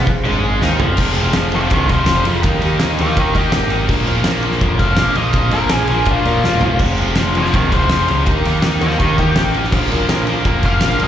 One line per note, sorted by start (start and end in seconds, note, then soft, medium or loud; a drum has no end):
0.06 0.25 G#4 medium
0.06 0.24 C5 medium
0.06 0.25 F5 medium
0.06 muted overdriven electric guitar stroke medium
0.06 muted picked electric bass stroke soft
0.06 kick loud
0.24 0.60 G#1 loud
0.24 0.61 G#2 medium
0.24 0.62 G#3 loud
0.24 0.59 G#4 medium
0.24 0.59 C5 medium
0.24 0.59 F5 medium
0.24 crash medium
0.61 0.80 D#2 loud
0.61 0.80 D#3 medium
0.61 0.80 D#4 loud
0.61 0.95 G#4 medium
0.61 0.95 C5 medium
0.61 0.95 F5 loud
0.61 snare medium
0.79 0.98 F1 loud
0.79 0.97 F2 medium
0.79 0.98 F3 loud
0.79 floor tom loud
0.97 1.15 F1 medium
0.97 1.15 F2 loud
0.97 1.16 C3 loud
0.97 1.16 F3 loud
0.97 1.33 F5 loud
0.97 kick loud
0.97 crash loud
1.01 1.33 G#4 loud
1.01 1.33 C5 loud
1.15 1.33 F1 medium
1.15 1.34 F2 medium
1.15 1.35 C3 medium
1.15 1.35 F3 medium
1.15 ride medium
1.33 1.68 F1 medium
1.33 1.52 F2 medium
1.33 1.53 C3 medium
1.33 1.54 F3 loud
1.33 1.68 G#4 medium
1.33 1.68 C5 medium
1.33 1.68 F5 loud
1.33 snare loud
1.33 ride loud
1.52 1.69 F2 medium
1.52 1.72 C3 medium
1.52 1.72 F3 medium
1.52 1.71 C5 medium
1.52 1.72 F5 medium
1.52 ride medium
1.70 1.88 C2 medium
1.70 1.87 F2 loud
1.70 1.88 C3 loud
1.70 1.89 F3 loud
1.70 2.04 G#4 medium
1.70 1.90 A#4 medium
1.70 2.04 C5 medium
1.70 1.90 D#5 medium
1.70 2.05 F5 medium
1.70 kick loud
1.70 ride loud
1.88 2.06 C2 medium
1.88 2.05 F2 medium
1.88 2.06 C3 loud
1.88 2.07 F3 medium
1.88 2.25 C5 medium
1.88 kick medium
1.88 ride medium
2.06 2.25 F1 loud
2.06 2.24 F2 medium
2.06 2.25 C3 medium
2.06 2.25 F3 medium
2.06 2.40 G#4 medium
2.06 2.40 C5 medium
2.06 2.40 F5 medium
2.06 snare loud
2.06 ride loud
2.25 2.43 F2 medium
2.25 2.42 C3 medium
2.25 2.43 F3 medium
2.25 ride medium
2.42 2.61 D#2 loud
2.42 2.59 D#3 loud
2.42 2.61 A#3 loud
2.42 2.61 D#4 loud
2.42 2.76 G4 loud
2.42 2.77 A#4 loud
2.42 2.77 D#5 loud
2.42 kick loud
2.42 ride loud
2.60 2.79 D#2 medium
2.60 2.79 D#3 medium
2.60 2.81 A#3 medium
2.60 2.81 D#4 loud
2.60 ride medium
2.80 2.98 D#2 medium
2.80 2.98 D#3 loud
2.80 2.99 A#3 loud
2.80 3.00 D#4 loud
2.80 3.14 G4 medium
2.80 3.14 A#4 medium
2.80 3.15 D#5 loud
2.80 snare loud
2.80 ride loud
2.99 3.16 D#2 loud
2.99 3.14 D#3 medium
2.99 3.16 A#3 medium
2.99 3.16 D#4 medium
2.99 3.18 C5 medium
2.99 3.18 F5 medium
2.99 ride medium
3.15 3.34 D#2 loud
3.15 3.34 D#3 medium
3.15 3.35 A#3 loud
3.15 3.35 D#4 loud
3.15 3.49 G4 medium
3.15 3.48 A#4 medium
3.15 3.35 A#4 medium
3.15 3.50 D#5 medium
3.15 3.36 D#5 medium
3.15 kick loud
3.15 ride loud
3.35 3.51 D#3 medium
3.35 3.52 D#3 medium
3.35 3.53 A#3 medium
3.35 3.53 D#4 loud
3.35 3.72 G4 loud
3.35 kick medium
3.35 ride medium
3.50 3.87 G#1 loud
3.50 3.69 D#3 medium
3.50 3.70 A#3 medium
3.50 3.85 G4 medium
3.50 3.85 A#4 medium
3.50 3.85 D#5 medium
3.50 snare loud
3.50 ride loud
3.54 3.70 D#4 loud
3.70 3.88 D#3 medium
3.70 3.88 A#3 medium
3.70 3.89 D#4 medium
3.70 ride medium
3.87 4.06 A#1 medium
3.87 4.05 A#2 medium
3.87 4.07 F3 loud
3.87 4.07 A#3 loud
3.87 4.22 F4 loud
3.87 4.22 A#4 loud
3.87 4.22 C#5 loud
3.87 kick loud
3.87 crash loud
4.06 4.24 A#1 loud
4.06 4.25 A#2 medium
4.06 4.26 F3 medium
4.06 4.27 A#3 loud
4.06 ride medium
4.24 4.59 A#1 medium
4.24 4.42 A#2 medium
4.24 4.43 F3 loud
4.24 4.44 A#3 loud
4.24 4.58 F4 loud
4.24 4.58 A#4 medium
4.24 4.58 C#5 loud
4.24 snare loud
4.24 ride loud
4.42 4.59 A#2 medium
4.42 4.61 F3 medium
4.42 4.61 A#3 loud
4.42 ride medium
4.52 snare soft
4.59 4.79 F2 medium
4.59 4.78 A#2 loud
4.59 4.80 F3 loud
4.59 4.80 A#3 loud
4.59 4.94 F4 medium
4.59 4.94 A#4 medium
4.59 4.94 C#5 medium
4.59 kick loud
4.59 ride medium
4.79 4.97 F1 medium
4.79 4.97 A#2 medium
4.79 4.99 F3 loud
4.79 4.99 A#3 medium
4.79 5.15 F5 medium
4.79 kick medium
4.79 ride medium
4.97 5.14 A#1 loud
4.97 5.14 A#2 medium
4.97 5.16 F3 medium
4.97 5.16 A#3 medium
4.97 5.32 F4 medium
4.97 5.32 A#4 medium
4.97 5.32 C#5 medium
4.97 snare loud
4.97 ride loud
5.15 5.33 A#1 medium
5.15 5.31 A#2 medium
5.15 5.33 F3 medium
5.15 5.33 A#3 medium
5.15 5.52 D#5 loud
5.15 ride medium
5.32 5.52 A#1 loud
5.32 5.50 A#2 loud
5.32 5.51 F3 loud
5.32 5.51 A#3 loud
5.32 kick loud
5.32 ride loud
5.36 5.69 F4 medium
5.36 5.69 A#4 medium
5.36 5.70 D#5 loud
5.51 5.70 A#1 medium
5.51 5.68 A#2 medium
5.51 5.69 F3 medium
5.51 5.69 A#3 medium
5.51 5.73 A#4 loud
5.51 ride medium
5.69 5.88 A#1 medium
5.69 5.87 A#2 medium
5.69 5.89 F3 medium
5.69 5.89 A#3 loud
5.69 6.05 F4 medium
5.69 6.08 G#4 medium
5.69 6.05 A#4 medium
5.69 6.05 C#5 medium
5.69 snare loud
5.69 ride loud
5.88 6.06 A#1 loud
5.88 6.05 A#2 medium
5.88 6.06 F3 medium
5.88 6.07 A#3 medium
5.88 ride medium
6.05 6.24 A#1 medium
6.05 6.24 A#2 loud
6.05 6.25 F3 loud
6.05 6.26 A#3 loud
6.05 6.41 F4 medium
6.05 6.44 F4 medium
6.05 6.41 A#4 medium
6.05 6.41 C#5 medium
6.05 kick loud
6.05 ride loud
6.25 6.42 A#2 medium
6.25 6.43 A#2 medium
6.25 6.44 F3 loud
6.25 6.45 A#3 loud
6.25 ride medium
6.44 6.78 E1 medium
6.44 6.62 A#2 medium
6.44 6.62 F3 medium
6.44 6.64 A#3 medium
6.44 6.81 F4 medium
6.44 6.79 F4 medium
6.44 6.79 A#4 medium
6.44 6.79 C#5 medium
6.44 snare medium
6.61 6.80 A#2 medium
6.61 6.80 F3 medium
6.61 floor tom medium
6.65 6.81 A#3 medium
6.79 6.97 F1 loud
6.79 6.97 F2 medium
6.79 6.98 C3 loud
6.79 6.99 F3 loud
6.79 7.14 F4 medium
6.79 7.15 G#4 medium
6.79 7.15 C5 loud
6.79 kick loud
6.79 crash loud
6.98 7.17 F1 medium
6.98 7.14 F2 medium
6.98 7.15 C3 medium
6.98 7.16 F3 medium
6.98 ride medium
7.16 7.52 F1 medium
7.16 7.34 F2 medium
7.16 7.35 C3 loud
7.16 7.35 F3 loud
7.16 7.51 F4 medium
7.16 7.52 G#4 medium
7.16 7.52 C5 loud
7.16 snare loud
7.16 ride loud
7.35 7.51 F2 medium
7.35 7.52 C3 medium
7.35 7.53 F3 medium
7.35 7.53 C5 medium
7.35 7.54 F5 medium
7.35 ride medium
7.45 snare soft
7.52 7.71 C2 loud
7.52 7.69 F2 loud
7.52 7.70 C3 loud
7.52 7.72 F3 loud
7.52 7.87 F4 medium
7.52 7.87 G#4 medium
7.52 7.72 A#4 medium
7.52 7.87 C5 medium
7.52 7.72 D#5 medium
7.52 kick loud
7.52 ride loud
7.71 7.89 C2 medium
7.71 7.89 F2 medium
7.71 7.90 C3 medium
7.71 7.91 F3 medium
7.71 8.07 C5 medium
7.71 kick medium
7.71 ride medium
7.89 8.08 F1 loud
7.89 8.06 F2 medium
7.89 8.08 C3 medium
7.89 8.09 F3 medium
7.89 8.25 F4 medium
7.89 8.25 G#4 medium
7.89 snare loud
7.89 ride loud
7.94 8.26 C5 medium
8.08 8.26 C#2 medium
8.08 8.25 F2 medium
8.08 8.26 C3 medium
8.08 8.26 F3 loud
8.08 ride medium
8.26 8.44 D#2 loud
8.26 8.44 D#3 loud
8.26 8.46 A#3 loud
8.26 8.45 D#4 loud
8.26 8.59 D#4 loud
8.26 8.60 G4 loud
8.26 8.60 A#4 loud
8.26 kick loud
8.26 ride loud
8.45 8.63 D#2 medium
8.45 8.63 D#3 medium
8.45 8.65 A#3 medium
8.45 8.65 D#4 medium
8.45 ride medium
8.60 8.80 D#2 medium
8.60 8.81 D#3 medium
8.60 8.95 D#4 medium
8.60 8.96 G4 medium
8.60 8.96 A#4 loud
8.60 snare loud
8.60 ride loud
8.65 8.83 A#3 loud
8.65 8.83 D#4 loud
8.81 8.98 D#2 loud
8.81 8.99 D#3 medium
8.81 9.01 A#3 medium
8.81 9.00 D#4 loud
8.81 8.98 C5 medium
8.81 8.99 F5 medium
8.81 ride medium
8.90 snare soft
8.98 9.17 D#2 medium
8.98 9.17 D#3 medium
8.98 9.18 A#3 medium
8.98 9.33 D#4 medium
8.98 9.19 D#4 loud
8.98 9.33 G4 medium
8.98 9.32 A#4 medium
8.98 9.16 A#4 medium
8.98 9.18 D#5 medium
8.98 kick loud
8.98 ride loud
9.18 9.36 D#3 medium
9.18 9.35 D#3 medium
9.18 9.38 A#3 loud
9.18 9.38 D#4 loud
9.18 9.54 G4 medium
9.18 kick medium
9.18 ride medium
9.35 9.73 A1 loud
9.35 9.54 D#3 medium
9.35 9.55 A#3 medium
9.35 9.69 D#4 medium
9.35 9.55 D#4 medium
9.35 9.69 G4 medium
9.35 9.70 A#4 medium
9.35 snare loud
9.35 ride loud
9.54 9.72 D#3 medium
9.54 9.74 A#3 medium
9.54 9.73 D#4 medium
9.54 ride medium
9.64 snare soft
9.71 9.90 A#1 loud
9.71 9.89 A#2 loud
9.71 9.90 F3 loud
9.71 10.05 C#4 loud
9.71 10.05 F4 loud
9.71 10.06 A#4 loud
9.71 kick loud
9.71 crash loud
9.76 9.91 A#3 loud
9.90 10.08 A#1 medium
9.90 10.08 A#2 medium
9.90 10.08 F3 medium
9.90 10.11 A#3 loud
9.90 ride medium
10.07 10.25 A#2 medium
10.07 10.27 F3 medium
10.07 10.41 C#4 medium
10.07 10.42 F4 medium
10.07 10.42 A#4 loud
10.07 snare loud
10.07 ride loud
10.11 10.44 A#1 medium
10.11 10.28 A#3 loud
10.27 10.43 A#2 medium
10.27 10.43 F3 medium
10.27 10.45 A#3 medium
10.27 ride medium
10.44 10.63 F2 medium
10.44 10.62 A#2 medium
10.44 10.64 F3 loud
10.44 10.64 A#3 loud
10.44 10.79 C#4 medium
10.44 10.79 F4 medium
10.44 10.79 A#4 medium
10.44 kick loud
10.44 ride medium
10.63 10.81 F1 medium
10.63 10.81 A#2 medium
10.63 10.82 F3 medium
10.63 10.83 A#3 medium
10.63 11.01 F5 medium
10.63 kick medium
10.63 ride medium
10.81 11.00 A#1 loud
10.81 10.99 A#2 medium
10.81 10.99 F3 medium
10.81 11.01 A#3 medium
10.81 11.08 C#4 medium
10.81 11.08 F4 medium
10.81 11.08 A#4 medium
10.81 snare loud
10.81 ride medium
10.99 11.08 A#1 medium
10.99 11.08 A#2 medium
10.99 11.08 F3 medium
10.99 11.08 A#3 medium
10.99 ride medium
11.04 11.08 D#5 loud